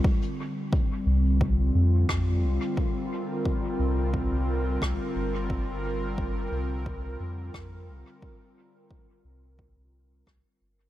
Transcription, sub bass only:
1.06 C2
1.75 F2
2.09 F2
2.43 C2
3.79 C2
4.31 C2
4.82 C2
5.16 G1
6.52 C2
7.20 F2
7.54 F2
7.88 C2
9.24 C2
9.76 C2
10.27 C2
10.61 G1

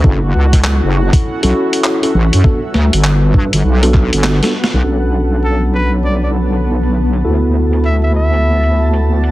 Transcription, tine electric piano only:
0.04 C#4 E4 F#4 A4
1.43 C#4 E4 F#4 A4
2.03 C#4 E4 F#4 A4
2.44 B3 D4 F#4 A4
3.83 B3 D4 F#4 A4
4.43 B3 D4 F#4 A4
4.84 C#4 D4 F#4 A4
7.25 B3 E4 F#4 A4

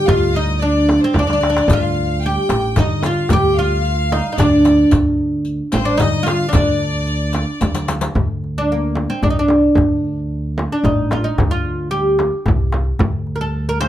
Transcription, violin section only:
0.05 F5
0.35 D#5
0.59 D5
1.01 C5
1.13 D5
1.66 F5
2.22 G5
2.77 D#5
3.04 F5
3.31 G5
3.56 F5
4.36 D5
5.73 C5
6.00 D#5
6.27 F5
6.52 D5

